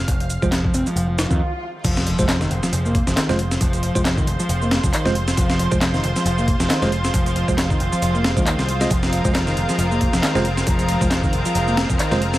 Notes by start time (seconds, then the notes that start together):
Already playing: G#3 C4 F4 F5
0.08 F1, kick, closed hi-hat, shaker
0.20 closed hi-hat
0.30 closed hi-hat, shaker
0.42 F1 F3 G#3 F4 C5, kick, shaker
0.52 snare, clap, closed hi-hat, shaker
0.65 kick
0.74 F1 C4, closed hi-hat, shaker
0.86 F3, closed hi-hat, shaker
0.96 F1, closed hi-hat, swell, shaker
1.09 F3
1.18 F3, snare, closed hi-hat, shaker
1.30 F2 D#3, kick, shaker
1.84 F1 F3 G#3 C4 F4 C5, kick, closed hi-hat, crash, impact, shaker
1.97 snare, shaker
2.07 closed hi-hat
2.19 F1 F3 G#3 F4 C5, kick, shaker
2.29 snare, clap, closed hi-hat, shaker
2.41 D#3, snare, shaker
2.50 F1, closed hi-hat
2.63 F3, snare, shaker
2.72 F1, closed hi-hat, shaker
2.85 A#3, shaker
2.95 kick, closed hi-hat
3.07 F1 F3, snare, shaker
3.16 D#3, snare, clap, closed hi-hat, shaker
3.29 F1 G#3 F4 C5, snare, shaker
3.39 closed hi-hat
3.51 snare, shaker
3.61 F1 F3, kick, closed hi-hat, shaker
3.73 closed hi-hat, shaker
3.83 closed hi-hat
3.95 F1 F3 G#3 F4 C5, kick, shaker
4.05 snare, clap, closed hi-hat, shaker
4.17 D#3, kick, shaker
4.27 F1, closed hi-hat
4.40 F3, closed hi-hat, shaker
4.49 F1, closed hi-hat, shaker
4.62 A#3, shaker
4.71 snare, closed hi-hat
4.83 F1 F3, kick, shaker
4.93 D#3, clap, closed hi-hat, shaker
5.05 F1 G#3 F4 C5, snare, shaker
5.15 closed hi-hat
5.28 snare, shaker
5.37 F1 F3, kick, closed hi-hat, shaker
5.50 snare, shaker
5.59 closed hi-hat
5.71 F1 F3 G#3 F4 C5, kick, shaker
5.81 snare, clap, closed hi-hat, shaker
5.94 D#3, snare, shaker
6.03 F1, closed hi-hat
6.16 F3, snare, shaker
6.25 F1, closed hi-hat, shaker
6.38 A#3, shaker
6.48 kick, closed hi-hat
6.60 F1 F3, snare, shaker
6.70 D#3, snare, clap, closed hi-hat, shaker
6.82 F1 G#3 F4 C5, snare, shaker
6.92 closed hi-hat
7.04 snare, shaker
7.14 F1 F3, kick, closed hi-hat, shaker
7.26 closed hi-hat, shaker
7.36 closed hi-hat
7.48 F1 F3 G#3 F4 C5, kick, shaker
7.58 snare, clap, closed hi-hat, shaker
7.70 D#3, kick, shaker
7.80 F1, closed hi-hat
7.92 F3, closed hi-hat, shaker
8.02 F1, closed hi-hat, shaker
8.15 A#3, shaker
8.24 snare, closed hi-hat
8.36 D#2 F3 G#3 F4 C5, kick, shaker
8.46 D#3, clap, closed hi-hat, shaker
8.58 C2, snare, shaker
8.69 closed hi-hat
8.81 G#3 F4 D#5, snare, shaker
8.90 F1 F3 A#4, kick, closed hi-hat, shaker
9.03 snare, shaker
9.13 closed hi-hat
9.25 F1 F3 G#3 F4 C5, kick, shaker
9.35 snare, clap, closed hi-hat, shaker
9.47 D#3, snare, shaker
9.56 F1, closed hi-hat
9.69 F3, snare, shaker
9.78 F1, closed hi-hat, shaker
9.91 A#3, shaker
10.01 kick, closed hi-hat
10.13 F1 F3, snare, shaker
10.23 D#3, snare, clap, closed hi-hat, shaker
10.35 F1 G#3 F4 C5, snare, shaker
10.45 closed hi-hat
10.57 snare, shaker
10.67 F1 F3, kick, closed hi-hat, shaker
10.79 closed hi-hat, shaker
10.89 closed hi-hat
11.01 F1 F3 G#3 F4 C5, kick, shaker
11.11 snare, clap, closed hi-hat, shaker
11.23 D#3, kick, shaker
11.33 F1, closed hi-hat
11.46 F3, closed hi-hat, shaker
11.55 F1, closed hi-hat, shaker
11.68 A#3, shaker
11.77 snare, closed hi-hat
11.90 F1 F3, kick, shaker
11.99 D#3, clap, closed hi-hat, shaker
12.11 F1 G#3 F4 C5, snare, shaker
12.22 closed hi-hat
12.34 snare, shaker